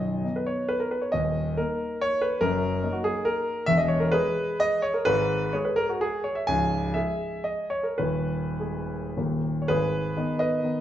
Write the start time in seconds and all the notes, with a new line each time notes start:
Already playing: B0 B1 D#5
0.24 B3 D#4
0.36 B4
0.46 C#5
0.68 B4
0.80 A#4
0.91 B4
1.02 C#5
1.12 D#1 D#2 D#5
1.57 A#3 D#4 A#4
2.01 C#5
2.21 B4
2.41 F#1 F#2 A#4
2.83 A#3 D#4
2.92 F#4
3.04 G#4
3.25 A#4
3.66 E1 E2 E5
3.77 D#5
3.88 C#5
4.00 A#4
4.11 G#3 G#4 B4
4.60 D#5
4.82 C#5
4.94 A#4
5.05 G#1 G#2 B4
5.53 G#3 G#4 C#5
5.65 B4
5.76 A#4
5.89 F#4
6.01 G#4
6.24 C#5
6.35 E5
6.47 C#1 C#2 G#5
6.94 G#3 G#4 E5
7.44 D#5
7.70 C#5
7.83 A#4
7.98 D#1 D#2 B4
8.60 G#3 G#4
9.17 D#1 D#2 D#3 A#3 G4
9.62 C#5
9.68 G#1 G#4 B4
10.17 D#3 B3 D#4
10.39 B4 D#5
10.63 D#3 B3 D#4